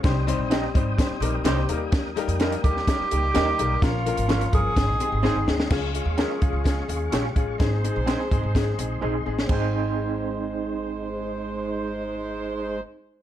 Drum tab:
CC |----------------|----------------|----------------|x---------------|
HH |x-x-x-x-x-x-x-x-|x-xxxxx-x-x-x-x-|x-xxxxx-x-x-----|--x-x-x-x-x-x-x-|
SD |o---o---o---o---|o---o--oo---o---|o---o---o---o-oo|o---o---o---o---|
BD |o-----o-o-------|o-----o-o-------|o-----o-o-------|o-----o-o-----o-|

CC |----------------|x---------------|----------------|
HH |x-x-x-x-x-x-----|----------------|----------------|
SD |o---o---o------o|----------------|----------------|
BD |o-----o-o-------|o---------------|----------------|